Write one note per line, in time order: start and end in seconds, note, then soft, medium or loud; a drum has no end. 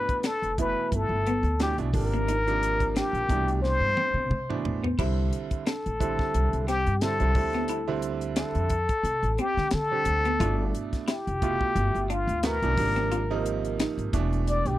0.00 0.20 B2 medium
0.00 0.20 E3 medium
0.00 0.20 A3 medium
0.00 0.20 D4 medium
0.00 0.28 B4 medium
0.09 kick medium
0.09 closed hi-hat soft
0.23 0.52 D4 medium
0.23 0.59 A4 medium
0.23 snare loud
0.23 closed hi-hat medium
0.42 0.73 F1 medium
0.42 closed hi-hat soft
0.58 1.22 B2 medium
0.58 1.22 E3 medium
0.58 1.22 A3 medium
0.58 1.22 E4 medium
0.58 0.97 B4 medium
0.58 kick medium
0.58 closed hi-hat medium
0.92 1.09 G1 medium
0.92 kick medium
0.92 closed hi-hat medium
0.96 1.62 A4 medium
1.09 1.40 G1 medium
1.26 1.55 B3 medium
1.26 closed hi-hat medium
1.43 1.74 D2 medium
1.43 closed hi-hat soft
1.60 1.71 B2 medium
1.60 1.72 E3 medium
1.60 1.72 A3 medium
1.60 1.72 D4 medium
1.60 1.77 G4 medium
1.60 snare medium
1.60 closed hi-hat medium
1.78 1.92 B1 medium
1.78 1.88 B2 medium
1.78 1.88 E3 medium
1.78 1.88 A3 medium
1.78 1.88 D4 medium
1.78 closed hi-hat soft
1.93 3.00 G#1 medium
1.93 2.35 C3 medium
1.93 2.35 F3 medium
1.93 2.35 A#3 medium
1.93 2.36 D4 medium
1.93 2.98 A#4 medium
1.93 kick medium
1.93 open hi-hat medium
2.14 2.26 A#3 medium
2.14 closed hi-hat soft
2.28 2.56 D#4 medium
2.28 closed hi-hat medium
2.47 3.29 C3 medium
2.47 3.29 F3 medium
2.47 3.29 A#3 medium
2.47 3.29 D4 medium
2.47 closed hi-hat soft
2.63 closed hi-hat medium
2.80 kick medium
2.80 closed hi-hat soft
2.96 3.24 D4 medium
2.96 3.61 G4 medium
2.96 snare loud
2.96 closed hi-hat medium
3.13 3.27 A#1 medium
3.13 closed hi-hat soft
3.29 3.76 C2 medium
3.29 4.25 B2 medium
3.29 4.25 E3 medium
3.29 4.25 A3 medium
3.29 4.25 D4 medium
3.29 kick medium
3.29 closed hi-hat medium
3.48 closed hi-hat soft
3.62 4.60 C5 loud
3.62 snare soft
3.80 3.95 G2 medium
3.97 4.25 C4 medium
3.97 high tom medium
4.14 4.28 C3 medium
4.30 4.61 C3 medium
4.30 mid tom medium
4.49 4.81 B2 medium
4.49 4.81 E3 medium
4.49 4.81 A3 medium
4.49 4.81 D4 medium
4.49 mid tom medium
4.65 4.95 A1 medium
4.65 floor tom medium
4.84 4.96 B3 medium
4.84 floor tom medium
4.99 5.29 C2 medium
4.99 5.62 D3 medium
4.99 5.62 G3 medium
4.99 5.62 C4 medium
4.99 5.27 E4 medium
4.99 5.62 E4 medium
4.99 kick loud
4.99 crash medium
5.33 closed hi-hat medium
5.51 kick medium
5.51 closed hi-hat soft
5.66 5.95 D4 medium
5.66 6.64 A4 medium
5.66 snare loud
5.66 closed hi-hat medium
5.86 6.16 A1 medium
5.86 closed hi-hat soft
6.00 6.64 D3 medium
6.00 6.64 G3 medium
6.00 6.64 C4 medium
6.00 6.64 E4 medium
6.00 kick medium
6.00 closed hi-hat medium
6.19 kick medium
6.19 snare soft
6.34 6.51 C2 medium
6.34 closed hi-hat medium
6.53 6.83 C2 medium
6.53 closed hi-hat soft
6.67 6.96 C4 medium
6.67 7.03 G4 medium
6.67 snare soft
6.67 closed hi-hat medium
6.87 7.17 G2 medium
6.87 closed hi-hat soft
7.01 7.14 D3 medium
7.01 7.14 G3 medium
7.01 7.14 C4 medium
7.01 7.14 E4 medium
7.01 8.04 A4 medium
7.01 snare medium
7.01 closed hi-hat medium
7.20 7.34 C2 medium
7.20 7.30 D3 medium
7.20 7.30 G3 medium
7.20 7.30 C4 medium
7.20 7.30 E4 medium
7.20 closed hi-hat soft
7.35 8.42 D2 medium
7.35 7.77 D3 medium
7.35 7.77 G3 medium
7.35 7.78 C4 medium
7.35 7.77 E4 medium
7.35 kick medium
7.35 open hi-hat medium
7.53 7.67 B3 medium
7.53 snare soft
7.53 closed hi-hat soft
7.68 7.98 E4 medium
7.68 closed hi-hat medium
7.88 8.71 D3 medium
7.88 8.70 G3 medium
7.88 8.70 C4 medium
7.88 8.70 E4 loud
8.02 closed hi-hat medium
8.21 closed hi-hat soft
8.36 8.65 D4 medium
8.36 9.42 A4 medium
8.36 snare loud
8.36 closed hi-hat medium
8.55 8.86 F2 medium
8.55 closed hi-hat soft
8.69 kick medium
8.69 closed hi-hat medium
8.89 kick medium
8.89 closed hi-hat soft
9.03 9.21 C3 medium
9.03 closed hi-hat medium
9.23 9.37 A1 medium
9.23 closed hi-hat soft
9.38 9.67 C4 medium
9.38 9.76 G4 medium
9.38 closed hi-hat medium
9.57 9.71 D3 medium
9.57 snare soft
9.71 10.03 D3 medium
9.71 10.76 A4 medium
9.71 snare loud
9.71 closed hi-hat medium
9.92 10.23 D3 medium
9.92 10.23 G3 medium
9.92 10.23 C4 medium
9.92 10.23 G4 medium
10.05 10.37 D2 medium
10.05 kick medium
10.05 closed hi-hat medium
10.25 10.38 B3 medium
10.25 closed hi-hat soft
10.40 10.71 G1 loud
10.40 11.04 B2 medium
10.40 11.04 A3 medium
10.40 11.04 D4 medium
10.40 11.04 E4 medium
10.40 10.69 F4 medium
10.40 kick loud
10.40 closed hi-hat medium
10.75 closed hi-hat medium
10.93 kick medium
10.93 snare soft
10.93 closed hi-hat soft
11.08 11.36 E4 medium
11.08 12.12 G4 medium
11.08 snare loud
11.08 closed hi-hat medium
11.27 11.57 F1 medium
11.27 closed hi-hat soft
11.42 12.06 B2 medium
11.42 12.06 A3 medium
11.42 12.06 E4 medium
11.42 12.06 F4 medium
11.42 kick medium
11.42 closed hi-hat medium
11.61 kick medium
11.76 11.93 G1 medium
11.76 closed hi-hat medium
11.95 12.25 G1 medium
11.95 closed hi-hat soft
12.10 12.38 D4 medium
12.10 12.48 F4 medium
12.10 closed hi-hat medium
12.27 12.58 D2 medium
12.27 closed hi-hat soft
12.43 12.55 B2 medium
12.43 12.56 E3 medium
12.43 12.56 A3 medium
12.43 12.56 B3 medium
12.43 13.47 A#4 medium
12.43 snare loud
12.43 closed hi-hat medium
12.62 12.76 B1 medium
12.62 12.73 B2 medium
12.62 12.73 E3 medium
12.62 12.73 A3 medium
12.62 12.73 D4 medium
12.62 closed hi-hat soft
12.77 13.84 G#1 medium
12.77 13.19 C3 medium
12.77 13.20 F3 medium
12.77 13.20 A#3 medium
12.77 13.20 D4 medium
12.77 kick loud
12.77 open hi-hat medium
12.96 13.09 C4 medium
12.96 snare soft
12.96 closed hi-hat soft
13.12 13.40 F4 medium
13.12 closed hi-hat medium
13.30 14.13 C3 loud
13.30 14.13 F3 medium
13.30 14.13 A#3 medium
13.30 14.13 D#4 loud
13.46 closed hi-hat medium
13.65 closed hi-hat soft
13.80 14.08 D#4 medium
13.80 snare loud
13.80 closed hi-hat medium
13.98 14.12 G#1 medium
13.98 closed hi-hat soft
14.13 14.60 E1 medium
14.13 14.79 B2 medium
14.13 14.79 E3 medium
14.13 14.79 A3 medium
14.13 14.79 D4 medium
14.13 kick loud
14.13 closed hi-hat medium
14.33 closed hi-hat soft
14.47 14.69 D5 medium
14.47 closed hi-hat medium
14.65 14.79 B1 medium
14.65 14.79 G4 medium
14.65 closed hi-hat soft